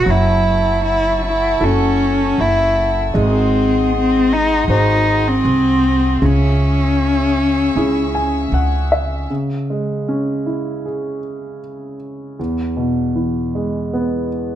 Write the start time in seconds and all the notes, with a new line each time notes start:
Already playing: F#4 E6
0.05 F#1 F#3 A4 F#5 C#6
0.10 E4
0.84 E4
1.25 E4
1.60 F#1 C#4 E4 F#4 A4
2.38 F#1 E4
3.13 G#1 G#3 G#4 C6 D#6
3.19 C4
3.96 C4
4.32 D#4
4.68 G#1 D#4 F#4 G#4 C5
5.28 C4
5.45 C2
6.22 C#2 C#3 C#4 E5 C#6 E6
7.75 C#2 C#4 E4 G#4
8.15 G#5
8.52 C#2 F#5
8.92 E5
9.30 C#3
9.70 G#3
10.08 C#4
10.46 E4
10.86 G#4
12.39 E2
12.77 B2
13.15 E3
13.55 G#3
13.94 B3